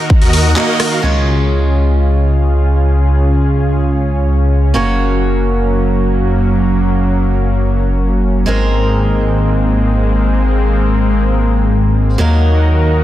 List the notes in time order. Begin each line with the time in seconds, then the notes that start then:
Already playing: D#3 D#4 F#4 A#4
0.10 kick
0.22 D#2 F#4 A#4 D#5, open hi-hat
0.33 open hi-hat
0.56 A#3 D#4 F#4 A#4 D#5, clap
0.80 cross-stick, open hi-hat
0.91 F#4 A#4 F5
1.02 C#2 C#3 G#3 C#4 F4 G#4 C#5, crash
4.74 F#1 F#3 A#3 C#4 F#4 C#5
8.46 G#1 G#3 A#3 C4 D#4 A#4
12.18 D#2 D#3 F#3 A#3 D#4 F#4 A#4